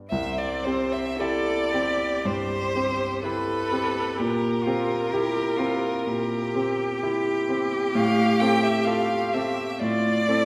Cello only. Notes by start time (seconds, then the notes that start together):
0.12 C4
1.18 A4
1.72 G4
3.23 A4
4.17 G4
4.63 F4
5.11 G4
5.57 F4
6.06 G4
9.79 F4
10.27 E4